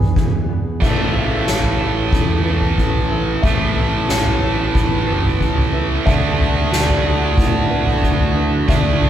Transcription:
Already playing: E2 E3 B3 D4 G#4 B4 G#5
0.00 floor tom, mid tom
0.16 E3, kick
0.49 B3
0.80 A1 A2 E3 A3 B3 C#4 A4 E5, kick, floor tom, crash
1.14 A1 E4, floor tom
1.47 A1 C#5, snare
1.63 floor tom
1.80 A1 A4 C#5
2.12 E2 B3, kick, floor tom
2.45 A4 B4
2.61 floor tom
2.78 A1 B3, kick
2.94 floor tom
3.10 E4 B4
3.42 A1 A2 E3 A3 B4 E5, kick, floor tom
3.75 A1 E4, floor tom
4.08 A1 C#5, snare
4.25 floor tom
4.41 A1 A4 C#5
4.74 A1 B3, kick, floor tom
5.07 F#1 A4 B4
5.24 floor tom
5.40 C#2 B3, kick
5.58 floor tom
5.73 E4 B4
6.05 D2 D3 A3 D4 E4 F#4 E5, kick, floor tom
6.38 D2 D4, floor tom
6.71 D2 D5, snare
6.88 floor tom
7.04 D2 F#4
7.37 A2 A3, kick, floor tom
7.70 F#4 B4
7.87 floor tom
8.03 D2 A3, kick
8.19 floor tom
8.35 D4 B4
8.68 D2 D3 A3 D4 E5, kick, floor tom
9.00 D2 D4, floor tom

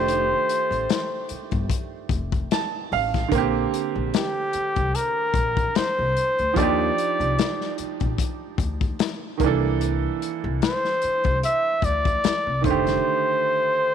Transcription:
Already playing: F1 D#3 A3 D4 G4 C5
0.08 closed hi-hat
0.49 closed hi-hat
0.70 A1, closed hi-hat
0.90 snare, closed hi-hat
1.29 muted upright bass stroke, closed hi-hat
1.51 G1, kick, closed hi-hat
1.70 kick, closed hi-hat
2.09 F1, kick, closed hi-hat
2.32 kick, closed hi-hat
2.51 A5, snare, closed hi-hat
2.92 A1 F5, open hi-hat
3.14 kick, snare, closed hi-hat
3.28 A#1 D3 A#3, kick
3.32 C4, closed hi-hat
3.38 G4
3.74 closed hi-hat
3.96 A#1
4.14 G4, snare, closed hi-hat
4.53 muted upright bass stroke, closed hi-hat
4.76 C2, kick, closed hi-hat
4.95 A#4, closed hi-hat
5.34 A#1, kick, closed hi-hat
5.57 kick, closed hi-hat
5.75 C5, muted upright bass stroke, snare, closed hi-hat
5.99 C2
6.17 closed hi-hat
6.39 D2, closed hi-hat
6.53 D#2 F3 D4, kick, closed hi-hat
6.58 D#4 D5
6.62 G4
6.98 closed hi-hat
7.20 C2, closed hi-hat
7.39 snare, closed hi-hat
7.61 snare
7.78 muted upright bass stroke, closed hi-hat
8.00 A#1, kick, closed hi-hat
8.18 kick, closed hi-hat
8.58 D2, kick, closed hi-hat
8.81 kick, closed hi-hat
8.99 snare, closed hi-hat
9.37 C2 D#3 A#3, kick, closed hi-hat
9.43 E3 D4 A4
9.81 closed hi-hat
10.22 closed hi-hat
10.44 C2
10.62 C5, snare, closed hi-hat
10.85 snare
11.02 muted upright bass stroke, closed hi-hat
11.24 C2, kick, closed hi-hat
11.43 E5, closed hi-hat
11.82 D2 D5, kick, closed hi-hat
12.05 kick, closed hi-hat
12.24 muted upright bass stroke, snare, closed hi-hat
12.47 C2
12.61 F1 D#3 A3, kick, closed hi-hat
12.65 D3 C5
12.70 G4
12.87 snare, closed hi-hat

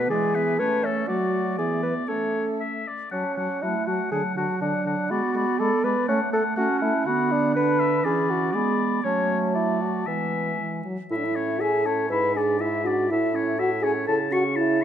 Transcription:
Already playing: B2 B3 F#5
0.10 E3 G#3 G#4 D5 G#5
0.35 B3 B4 E5
0.59 A3 C#4 B4 C#5 A5
0.83 A3 C#4 A4 E5
1.08 F#3 A3 F#4 D5
1.58 E3 B3 G#4 D5 E5
1.83 B4
2.08 A3 C#4 A4 C#5 E5
2.60 E5
2.88 D5
3.11 F#3 C#4 F#5 A5
3.37 F#3 F#5 A5
3.62 F#3 A3 E4 F#5 A5
3.86 F#3 F#4 F#5 A5
4.11 D3 F#3 G#4 F#5 A5
4.35 D3 F#4 F#5 A5
4.60 D3 D4 F#5 A5
4.85 D3 F#5 A5
5.09 G#3 B3 F#4 D5 B5
5.34 G#3 D5 B5
5.60 G#3 A4 D5 B5
5.83 G#3 B4 D5 B5
6.08 A3 C#4 F#5 A5
6.31 A3 A4 F#5 A5
6.56 A3 C#4 F#4 F#5 A5
6.79 A3 E4 F#5 A5
7.05 D3 B3 F#4 F#5 B5
7.32 D4
7.54 D4 B4 F#5 B5
7.80 E5
8.04 E3 C#4 G#4 D5 B5
8.31 F#4
8.53 G#3 B3 G#4 D5 B5
9.04 F#3 A3 C#4 C#5 A5
9.54 E4 D5
9.81 F#4
10.07 E3 G#3 B3 E5 G#5
10.59 E3
10.85 F#3
11.10 A2 E4 E5
11.17 D4
11.25 E4
11.36 C#4 C#5
11.60 E4 G#4 E5 G#5
11.85 C#4 A4 C#5 A5
12.10 G#2 E4 B4 E5 B5
12.35 D4 G#4 D5 G#5
12.60 E4 E5
12.85 D4 F#4 D5 F#5
13.09 A2 E4 E5
13.34 C#4 C#5
13.59 E4 F#4 E5 F#5
13.82 C#4 G#4 C#5 G#5
14.07 C#3 E4 A4 A5
14.31 C#4 F#4 F#5 C#6
14.56 E4 E5 A5
14.81 C#4

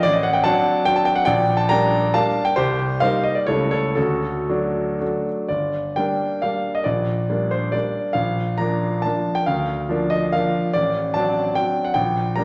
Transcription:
0.03 A1 D5
0.13 D#5
0.23 F#5
0.33 G5
0.44 F#3 C4 D4 F#5 A5
0.85 F#3 C4 D4 G5
0.96 A5
1.05 G5
1.16 F#5
1.25 A#1 D5 G5
1.57 A5
1.69 G3 A#3 D4 G5 A#5
2.14 G3 A#3 D4 F5 A5
2.45 G5
2.56 C2 G4 C5
3.00 G3 A#3 D#4 C5 F5
3.24 D#5
3.35 D5
3.47 C#2 G3 A3 E4 A4 C#5
3.71 A4 C#5
3.95 D2 F#4 A4
4.49 F#3 A3 D4
5.00 F#3 A3 D4
5.49 G1 D5
5.96 G3 A#3 D4 G5
6.42 G3 A#3 D4 F5
6.75 D#5
6.84 A#1 D5
7.30 G3 A#3 D4
7.51 C5
7.72 G3 A#3 D4 D5
8.13 A#1 F5
8.58 F3 A#3 D4 A#5
9.02 F3 A#3 D4 A5
9.35 G5
9.46 D2 F5
9.89 F3 A#3 D4
10.10 D#5
10.33 F3 A#3 D4 F5
10.73 A1 D5
11.14 F#3 C4 D4 A5
11.55 F#3 C4 D4 G5
11.85 F#5
11.94 A#1 G5
12.36 G3 A#3 D4 A#5

